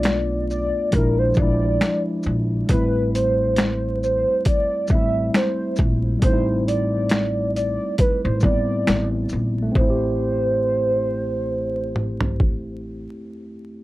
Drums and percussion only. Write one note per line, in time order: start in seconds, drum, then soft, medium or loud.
0.03 finger snap medium
0.03 snare loud
0.03 closed hi-hat medium
0.50 shaker soft
0.92 kick medium
0.92 closed hi-hat medium
1.34 kick medium
1.34 shaker soft
1.81 finger snap medium
1.81 snare loud
1.81 closed hi-hat soft
2.23 shaker soft
2.69 kick loud
2.69 closed hi-hat medium
3.15 closed hi-hat soft
3.15 shaker soft
3.56 finger snap medium
3.56 snare loud
3.56 closed hi-hat medium
4.03 shaker soft
4.45 kick medium
4.45 closed hi-hat medium
4.87 kick medium
4.87 shaker medium
5.34 finger snap medium
5.34 snare loud
5.34 closed hi-hat medium
5.76 kick medium
5.76 shaker soft
6.22 kick loud
6.22 closed hi-hat medium
6.68 closed hi-hat soft
6.68 shaker soft
7.09 finger snap medium
7.09 snare loud
7.09 closed hi-hat medium
7.56 closed hi-hat soft
7.56 shaker soft
7.98 kick medium
7.98 closed hi-hat medium
8.40 kick loud
8.40 shaker medium
8.87 finger snap medium
8.87 snare loud
8.87 closed hi-hat soft
9.29 shaker soft
9.75 kick loud
11.96 mid tom medium
12.21 floor tom medium
12.40 kick medium